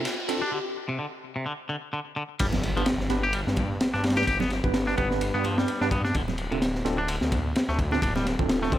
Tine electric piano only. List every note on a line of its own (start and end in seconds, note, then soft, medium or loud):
0.28 0.41 C4 medium
0.28 0.41 D4 medium
0.28 0.41 F4 medium
0.28 0.40 A4 loud
2.76 2.82 B3 medium
2.76 2.82 D4 medium
2.76 2.82 G4 medium
2.76 2.82 B4 loud
3.10 3.22 B3 loud
3.10 3.22 D4 medium
3.10 3.22 G4 medium
3.10 3.22 B4 loud
4.17 4.23 B3 medium
4.17 4.23 D4 medium
4.17 4.23 G4 medium
4.17 4.23 B4 medium
4.64 4.95 B3 medium
4.64 4.95 D4 medium
4.64 4.95 G4 medium
4.64 4.95 B4 medium
4.97 5.31 B3 medium
4.97 5.31 D4 medium
4.97 5.31 G4 medium
4.97 5.31 B4 loud
5.34 5.78 B3 medium
5.34 5.78 D4 medium
5.34 5.78 G4 medium
5.34 5.78 B4 medium
5.81 5.87 B3 loud
5.81 5.87 D4 medium
5.81 5.87 G4 medium
5.81 5.87 B4 loud
6.51 6.57 C4 medium
6.51 6.57 D4 medium
6.51 6.57 F4 medium
6.51 6.57 A4 loud
6.85 6.97 C4 loud
6.85 6.97 D4 medium
6.85 6.97 F4 medium
6.85 6.97 A4 loud
7.92 7.98 C4 medium
7.92 7.98 D4 medium
7.92 7.98 F4 medium
7.92 7.98 A4 medium
8.39 8.70 C4 medium
8.39 8.70 D4 medium
8.39 8.70 F4 medium
8.39 8.70 A4 medium
8.72 8.78 C4 medium
8.72 8.78 D4 medium
8.72 8.78 F4 medium
8.72 8.78 A4 loud